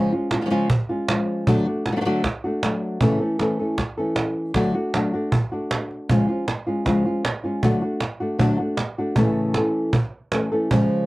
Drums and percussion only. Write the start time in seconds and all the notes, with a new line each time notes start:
0.31 cajon slap
0.70 cajon bass
1.09 cajon slap
1.47 cajon bass
1.86 cajon slap
2.24 cajon bass, cajon slap
2.63 cajon slap
3.01 cajon bass
3.39 cajon slap
3.78 cajon bass, cajon slap
4.16 cajon slap
4.54 cajon bass, cajon slap
4.94 cajon slap
5.32 cajon bass
5.71 cajon slap
5.91 cajon slap
6.09 cajon bass
6.48 cajon slap
6.86 cajon bass, cajon slap
7.25 cajon slap
7.63 cajon bass
8.00 cajon slap
8.39 cajon bass
8.77 cajon slap
9.16 cajon bass
9.54 cajon slap
9.93 cajon bass
10.32 cajon slap
10.71 cajon bass